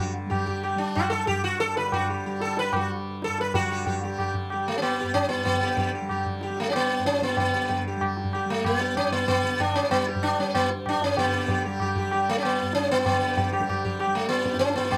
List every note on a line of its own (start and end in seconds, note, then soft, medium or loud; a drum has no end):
0.00 1.26 G2 medium
0.00 1.75 D3 medium
0.00 0.26 G3 medium
0.00 0.11 F#4 medium
0.00 0.13 G4 soft
0.26 0.76 G3 medium
0.26 0.45 G4 soft
0.31 tabla na medium
0.31 tabla ge medium
0.46 0.62 G4 soft
0.46 tabla ge medium
0.63 0.78 G4 soft
0.63 tabla na medium
0.76 2.26 G3 medium
0.76 0.96 D4 medium
0.95 1.09 F#4 medium
0.95 tabla na medium
0.95 tabla ge medium
1.10 1.26 A4 medium
1.10 tabla te medium
1.26 3.26 G2 medium
1.26 1.43 G4 medium
1.26 tabla tin medium
1.26 tabla ge medium
1.44 1.59 F#4 medium
1.60 1.77 A4 loud
1.60 tabla te medium
1.75 3.54 D3 medium
1.75 1.93 B4 loud
1.75 tabla te medium
1.92 2.08 F#4 medium
1.92 tabla na medium
1.92 tabla ge medium
2.10 2.25 G4 soft
2.26 2.75 G3 medium
2.26 2.41 G4 soft
2.40 2.58 A4 medium
2.40 tabla te medium
2.57 2.75 B4 loud
2.57 tabla te medium
2.73 4.04 G3 medium
2.73 2.90 F#4 medium
2.73 tabla na medium
2.73 tabla ge medium
3.22 3.40 A4 medium
3.22 tabla te medium
3.27 5.02 G2 medium
3.38 3.55 B4 medium
3.38 tabla te medium
3.54 5.52 D3 medium
3.54 4.00 F#4 medium
3.54 3.69 G4 soft
3.54 tabla tin medium
3.54 tabla ge medium
3.70 3.85 G4 soft
3.86 4.01 G4 soft
3.86 tabla tin medium
3.86 tabla ge medium
4.04 4.54 G3 medium
4.04 4.18 G4 soft
4.18 4.34 G4 soft
4.18 tabla na medium
4.18 tabla ge medium
4.34 tabla ge medium
4.50 6.02 G3 medium
4.50 4.66 G4 soft
4.50 tabla na medium
4.68 4.77 A3 medium
4.78 4.82 C#4 medium
4.82 5.14 B3 medium
4.82 tabla na medium
5.01 6.98 G2 medium
5.01 5.15 G4 soft
5.14 5.28 C#4 loud
5.14 tabla na medium
5.14 tabla ge medium
5.29 5.44 B3 medium
5.29 tabla te medium
5.45 5.91 B3 medium
5.45 tabla tin medium
5.45 tabla ge medium
5.53 7.48 D3 medium
5.63 5.77 G4 soft
5.77 5.93 G4 soft
5.77 tabla tin medium
5.77 tabla ge medium
5.95 6.10 G4 soft
6.02 6.50 G3 medium
6.09 6.26 G4 soft
6.09 tabla na medium
6.09 tabla ge medium
6.26 tabla ge medium
6.41 6.58 G4 soft
6.41 tabla te medium
6.50 7.96 G3 medium
6.57 6.69 A3 medium
6.57 tabla te medium
6.70 6.75 C#4 medium
6.70 tabla na medium
6.76 7.06 B3 medium
6.99 8.94 G2 medium
7.06 7.23 C#4 loud
7.06 tabla te medium
7.14 tabla te medium
7.22 7.39 B3 medium
7.22 tabla ke medium
7.29 tabla te medium
7.37 7.84 B3 medium
7.37 tabla tin loud
7.37 tabla ge medium
7.48 9.42 D3 medium
7.55 7.69 G4 soft
7.69 tabla tin medium
7.69 tabla ge medium
7.88 8.02 G4 soft
7.96 8.46 G3 medium
8.01 tabla na medium
8.01 tabla ge medium
8.17 tabla te medium
8.24 tabla ge soft
8.33 8.49 G4 soft
8.33 tabla na medium
8.46 9.90 G3 medium
8.50 8.66 A3 medium
8.65 8.97 B3 medium
8.65 tabla na medium
8.65 tabla ge medium
8.81 8.96 G4 soft
8.81 tabla te medium
8.94 10.87 G2 medium
8.94 9.12 C#4 loud
8.94 tabla na medium
8.94 tabla ge medium
9.12 9.27 B3 medium
9.12 tabla te medium
9.28 9.61 B3 loud
9.28 tabla tin loud
9.28 tabla ge loud
9.42 11.15 D3 medium
9.42 9.59 G4 soft
9.60 9.76 D4 medium
9.60 tabla tin medium
9.60 tabla ge medium
9.75 9.91 C#4 medium
9.75 tabla na medium
9.83 tabla ke medium
9.90 10.39 G3 medium
9.90 10.06 B3 medium
9.90 tabla na medium
9.90 tabla ge medium
10.07 10.23 G4 soft
10.07 tabla te medium
10.16 tabla ge medium
10.23 10.39 D4 loud
10.23 tabla na medium
10.39 11.66 G3 medium
10.39 10.55 C#4 medium
10.55 10.70 B3 medium
10.55 tabla na medium
10.55 tabla ge medium
10.70 tabla te medium
10.86 12.62 G2 medium
10.86 11.04 D4 medium
10.86 tabla na medium
10.86 tabla ge medium
11.02 11.18 C#4 medium
11.02 tabla te medium
11.16 13.11 D3 medium
11.16 11.62 B3 medium
11.16 11.33 G4 soft
11.16 tabla tin loud
11.16 tabla ge loud
11.35 11.48 G4 soft
11.48 11.64 G4 soft
11.48 tabla tin medium
11.48 tabla ge medium
11.65 12.14 G3 medium
11.65 11.80 G4 soft
11.80 11.96 G4 soft
11.80 tabla na medium
11.80 tabla ge medium
11.96 12.11 G4 soft
11.96 tabla ge medium
12.11 13.59 G3 medium
12.11 12.27 G4 soft
12.11 tabla na medium
12.29 12.38 A3 medium
12.38 12.44 C#4 medium
12.43 12.74 B3 medium
12.43 tabla na loud
12.62 14.54 G2 medium
12.73 12.91 C#4 loud
12.73 tabla te medium
12.82 tabla te medium
12.90 13.05 B3 loud
12.90 tabla ke medium
12.98 tabla te medium
13.06 13.50 B3 medium
13.06 tabla tin loud
13.06 tabla ge loud
13.11 14.98 D3 medium
13.22 13.36 G4 soft
13.37 13.51 G4 soft
13.37 tabla tin medium
13.37 tabla ge medium
13.52 13.67 G4 soft
13.52 tabla na medium
13.59 14.07 G3 medium
13.59 tabla ke medium
13.69 13.83 G4 soft
13.69 tabla na medium
13.69 tabla ge medium
13.85 13.98 G4 soft
13.85 tabla ge medium
13.99 14.14 G4 soft
13.99 tabla na medium
14.07 14.98 G3 medium
14.15 14.28 A3 medium
14.29 14.59 B3 medium
14.29 tabla te medium
14.38 tabla te medium
14.46 14.61 G4 soft
14.46 tabla ke medium
14.54 14.98 G2 medium
14.54 tabla te medium
14.59 14.75 C#4 loud
14.59 tabla te medium
14.70 tabla te medium
14.75 14.89 B3 medium
14.75 tabla ke medium
14.85 tabla te medium
14.90 14.98 B3 medium
14.90 tabla tin loud
14.90 tabla ge loud